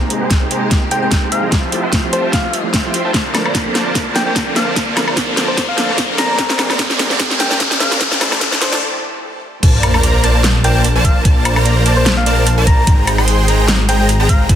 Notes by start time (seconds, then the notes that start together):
Already playing: G#1 C3 G#3 A#3 G4 G#4 C5 G5 A#5, riser
0.09 G#3 A#3 C4 D#4 G4, closed hi-hat
0.21 G#3 G#4 C5 G5 C6
0.30 kick, snare, closed hi-hat
0.40 G#3 A#3 C4 D#4 G4
0.51 G#3 G#4 C5 G5 A#5, closed hi-hat
0.70 G#3 A#3 C4 D#4 G4, kick, snare, closed hi-hat
0.91 G#3 G#4 C5 G5 A#5, closed hi-hat
1.01 G#3 A#3 C4 D#4 G4 G5
1.11 kick, snare, closed hi-hat
1.23 G#3 G#4 C5 G5 A#5
1.32 F5, closed hi-hat
1.42 F3 A3 C4 E4 G4
1.52 F1 F3 G3 A3 F4 C5 G5 A5, kick, snare, closed hi-hat
1.71 F3 A3 C4 E4 G4, closed hi-hat
1.83 F4 C5 E5 G5 C6
1.93 kick, snare, closed hi-hat
2.02 F3 A3 C4 E4 G4
2.13 F4 C5 E5 G5 A5, closed hi-hat
2.32 F3 A3 C4 E4 G4 F5, kick, snare, closed hi-hat
2.53 closed hi-hat
2.63 F3 A3 C4 E4 G4
2.74 F4 C5 E5 G5 A5, kick, snare, closed hi-hat
2.83 F3 A3 C4 E4 F4 G4 C5 E5 G5 C6
2.94 closed hi-hat
3.05 F4 C5 E5 G5 A5
3.14 A#1 D3 A#3 F4, kick, snare, closed hi-hat
3.33 F3 A#3 C4 D4 A4, snare, closed hi-hat, high woodblock
3.45 A#3 A#4 C5 D5 A#5, high woodblock
3.55 kick, snare, closed hi-hat
3.65 F3 A#3 C4 D4 A4
3.75 A#3 A#4 C5 D5 A5, snare, closed hi-hat
3.95 C5, kick, snare, closed hi-hat
4.14 F3 A#3 C4 D4 A4 G5, snare, closed hi-hat
4.26 A#3 A#4 C5 D5 G5 A#5
4.36 kick, snare, closed hi-hat
4.46 F3 A#3 C4 D4 A4
4.56 A#3 A#4 C5 D5 F5 A5, snare, closed hi-hat
4.76 kick, snare, closed hi-hat
4.96 F3 A#3 C4 D4 A4, snare, closed hi-hat, high woodblock
5.08 A#3 A#4 C5 D5 A#5, high woodblock
5.17 kick, snare, closed hi-hat
5.27 F3 A#3 C4 D4 A4
5.37 A#3 A#4 C5 D5 A5, snare, closed hi-hat
5.48 C5
5.57 A#3 D5, kick, snare, closed hi-hat
5.69 F5
5.77 F3 A#3 C4 D4 A4, snare, closed hi-hat
5.89 A#3 A#4 C5 D5 A#5
5.98 kick, snare, closed hi-hat
6.08 F3 A#3 C4 D4 A4
6.18 A#3 A#4 C5 D5 A5 A#5, snare, closed hi-hat
6.38 G#1 C3 G#3 A#3 G4 A#4 C5 D5 G#5, kick, snare, closed hi-hat
6.50 snare
6.58 F3 A#3 C4 D4 G#4, snare, closed hi-hat, high woodblock
6.70 A#3 A#4 C5 D5 A#5, snare, high woodblock
6.79 A#3 A#4, kick, snare, closed hi-hat
6.90 snare
6.98 F3 A#3 C4 D4 G#4, snare, closed hi-hat
7.10 A#3 A#4 C5 D5 A#5, snare
7.20 A#3 A#4 C5 D5 G#5, kick, snare, closed hi-hat
7.31 snare
7.39 F3 A#3 C4 D4 G#4 G5, snare, closed hi-hat
7.51 A#3 A#4 C5 D5 G5 A#5, snare
7.60 A#3 D5, kick, snare, closed hi-hat
7.71 snare
7.80 F3 A#3 C4 D4 G#4 F5, snare, closed hi-hat
7.91 A#3 A#4 C5 D5 A#5, snare
8.00 F1 F3 A3 C4 D4 E4 A4 C5 D5 A5, kick, snare, closed hi-hat
8.12 snare
8.20 F3 A3 C4 D4 A4 C5 D5 A5, snare, closed hi-hat, high woodblock
8.32 snare, high woodblock
8.40 F3 A3 C4 D4 A4 C5, kick, snare, closed hi-hat
8.52 snare
8.60 F3 A3 C4 D4 A4 C5 D5 A5, snare, closed hi-hat
8.72 snare
9.63 A#1 A#3 A#4 C5 D5 A5, kick, closed hi-hat, crash, sub drop
9.83 closed hi-hat, high woodblock
9.94 A#3 A#4 C5 D5 A#5, high woodblock
10.03 closed hi-hat
10.24 A#3 A#4 C5 D5 A5, closed hi-hat
10.44 snare, closed hi-hat
10.64 A#3 A#4 C5 D5 G5 A5, closed hi-hat
10.75 G5
10.84 closed hi-hat
10.95 A#3 A#4 C5 D5 A5
11.05 F5, kick, closed hi-hat
11.25 A#3 A#4 C5 A5, kick, closed hi-hat
11.45 closed hi-hat, high woodblock
11.56 A#3 A#4 C5 D5 A#5, high woodblock
11.66 closed hi-hat
11.86 A#3 A#4 C5 D5 A5, closed hi-hat
11.97 C5
12.06 snare, closed hi-hat
12.17 F5
12.26 A#3 A#4 C5 D5 A5, closed hi-hat
12.47 closed hi-hat
12.58 A#3 A#4 C5 D5 A5
12.67 A#5, kick, closed hi-hat
12.87 G#1 G#3 G#4 C5 G5 A#5, kick, closed hi-hat
13.07 closed hi-hat, high woodblock
13.18 G#3 G#4 C5 G5 C6, high woodblock
13.28 closed hi-hat
13.48 G#3 G#4 C5 G5 A#5, closed hi-hat
13.68 snare, closed hi-hat
13.88 G#3 G#4 C5 G5 A#5, closed hi-hat
14.00 G5
14.09 closed hi-hat
14.20 G#3 G#4 C5 G5 A#5
14.29 F5, kick, closed hi-hat
14.49 F1 F4 C5 E5 G5 A5, kick, closed hi-hat